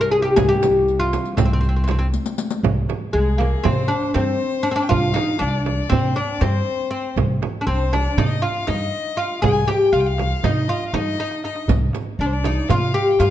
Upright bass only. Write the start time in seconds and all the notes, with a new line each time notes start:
0.37 C2
1.38 C2
2.63 C2
3.14 C2
3.65 C3
4.15 G2
4.91 C2
5.41 C2
5.91 C3
6.41 G2
7.16 C2
7.67 C2
8.17 C3
8.68 G2
9.43 C2
9.93 C2
10.43 C3
10.93 G2
11.69 C2
12.19 C2
12.70 C3
13.20 G2